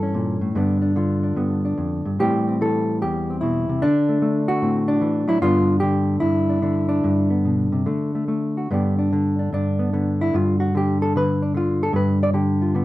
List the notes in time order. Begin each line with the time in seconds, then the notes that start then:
Already playing: G2 E3 A#3 A4
0.03 C#4
0.14 A#2
0.41 A2
0.55 G2 D3 B3 D4
0.82 D4
0.96 D3 F4
1.23 D4
1.36 G2 B3
1.65 D4
1.78 F2
2.05 G2
2.19 A2 E3 G3 C4 G4
2.48 C4
2.61 E3 A4
3.02 E2 G4
3.30 C4
3.41 B2 E4
3.69 C3
3.82 D3 D4
4.09 A3
4.22 A3
4.48 F#4
4.62 A2 C4
4.88 D4
5.01 E3
5.28 F#3 E4
5.42 G2 D3 B3 D4 F4
5.80 D3 G4
6.20 G2 E4
6.49 D4
6.62 D3 D4
6.89 D4
7.04 G2
7.30 B3
7.45 B2
7.72 C3
7.86 D3 A3
8.15 A3
8.28 A3
8.57 F#4
8.71 G2 D3 B3 D4 G4
8.99 D4
9.13 D3
9.39 D4
9.52 G2 D4
9.79 B3
9.93 D3 B3
10.21 E4
10.34 G2 F4
10.60 F#4
10.75 D3 G4
11.02 A4
11.15 D3 B4
11.42 D4
11.54 D3 F4
11.83 A4
11.93 G2 B4
12.23 D5
12.34 D3 G4
12.62 F4
12.75 D3 B3